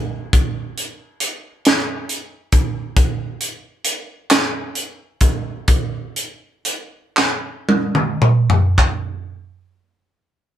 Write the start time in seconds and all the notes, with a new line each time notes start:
0.33 kick, closed hi-hat
0.78 closed hi-hat
1.20 closed hi-hat
1.65 snare, closed hi-hat
2.09 closed hi-hat
2.52 kick, closed hi-hat
2.97 kick, closed hi-hat
3.41 closed hi-hat
3.85 closed hi-hat
4.30 snare, clap, closed hi-hat
4.75 closed hi-hat
5.21 kick, closed hi-hat
5.68 kick, closed hi-hat
6.16 closed hi-hat
6.65 closed hi-hat
7.17 snare, clap
7.69 high tom
7.95 mid tom
8.22 mid tom
8.50 floor tom
8.78 kick, clap